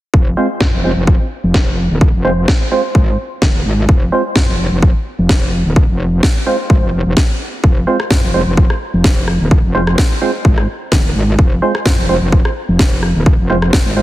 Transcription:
0.14 F1, kick
0.37 G#3 C4 F4 C5
0.60 F2, kick, snare
0.73 F1
0.84 G#3 C4 F4 C5
0.97 F1
1.07 kick
1.44 F1
1.54 kick, snare
1.90 D#1
2.01 kick
2.14 F1
2.25 G#3 C4 F4 C5
2.48 kick, snare
2.71 G#3 C4 F4 C5
2.95 G#1, kick
3.42 D#1, kick, snare
3.65 G#1
3.89 F1, kick
4.12 G#3 C4 F4 C5
4.36 F2, kick, snare
4.48 F1
4.72 F1
4.82 kick
5.19 F1
5.29 kick, snare
5.65 D#1
5.76 kick
5.89 F1
6.23 kick, snare
6.46 G#3 C4 F4 C5
6.70 G#1, kick
6.83 F1
7.06 F1
7.17 kick, snare
7.64 F1, kick
7.87 G#3 C4 F4 C5
8.00 cross-stick
8.10 F2, kick, snare
8.23 F1
8.34 G#3 C4 F4 C5
8.47 F1
8.57 kick
8.70 cross-stick
8.94 F1
9.04 kick, snare
9.28 cross-stick
9.40 D#1
9.51 kick
9.64 F1
9.75 G#3 C4 F4 C5
9.87 cross-stick
9.98 kick, snare
10.21 G#3 C4 F4 C5
10.45 G#1, kick
10.58 cross-stick
10.92 D#1, kick, snare
11.15 G#1
11.39 F1, kick
11.62 G#3 C4 F4 C5
11.75 cross-stick
11.86 F2, kick, snare
11.98 F1
12.09 G#3 C4 F4 C5
12.22 F1
12.32 kick
12.45 cross-stick
12.69 F1
12.79 kick, snare
13.03 cross-stick
13.15 D#1
13.26 kick
13.39 F1
13.50 G#3 C4 F4 C5
13.62 cross-stick
13.73 F1, kick, snare
13.86 G#1
13.96 G#3 C4 F4 C5

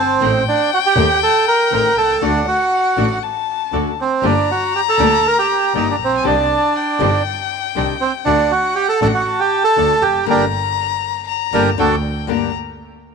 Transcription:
Already playing: G1 A5
0.00 C4
0.20 A1 D#3 A3 C4 D#4 G5
0.48 D4
0.74 F#4
0.86 G4
0.96 D#2 D#3 A3 C4 D#4
1.23 A4
1.48 A#4
1.70 A1 D#3 A3 C4 D#4 A#4
1.97 C2 A4
2.21 D2 D3 A3 D4 F#4 F#5
2.48 F#4
2.97 A1 D3 A3 D4 F#4
3.23 A5
3.72 D2 D3 A3 D4 F#4
4.01 C4
4.22 G1 D3 G3 A#3 D4 G4 A#5
4.51 F#4
4.75 G4
4.89 A4
4.98 D2 D3 G3 A#3 D4 G4
5.27 A#4
5.39 G4
5.74 G1 D3 G3 A#3 D4 D#4 G4
5.91 D4
5.99 A#1
6.04 C4
6.17 G#5
6.23 C2 C3 D#3 G3 C4 D4 D#4 G4 A5
6.76 G5
6.99 G1 C3 D#3 G3 C4 D4 D#4 G4
7.75 C2 C3 D#3 G3 C4 D4 D#4 G4
8.01 C4
8.24 D2 D3 A3 D4 F#4 F#5
8.51 F#4
8.75 G4
8.89 A4
9.01 A1 D3 A3 D4 F#4 A4
9.14 F#4
9.26 A5
9.40 G4
9.64 A4
9.76 D2 D3 A3 D4 F#4
10.02 F1 G4
10.26 G1 D3 G3 A#3 D4 G4 A#5
10.30 D4 G4 A#4
11.28 A#5
11.53 G1 D3 G3 A#3 D4 G4 A#4
11.78 D2 A3 C4 D4 F#4 A4 G5
12.27 G1 G2 D3 G3 A#3 D4 G4 A#5

